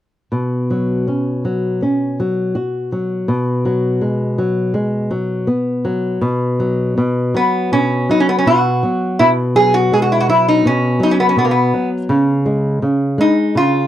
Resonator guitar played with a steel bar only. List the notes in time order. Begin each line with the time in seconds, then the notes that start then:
7.36 B3
7.73 C#4
8.11 D#4
8.20 C#4
8.29 B3
8.38 C#4
8.47 F#4
9.19 E4
9.56 G#4
9.74 F#4
9.94 G#4
10.02 F#4
10.12 E4
10.21 F#4
10.29 E4
10.48 D#4
10.67 C#4
11.03 D#4
11.11 C#4
11.20 B3
11.29 C#4
11.39 B3
11.45 A#3
11.51 B3
13.21 D#4
13.57 F4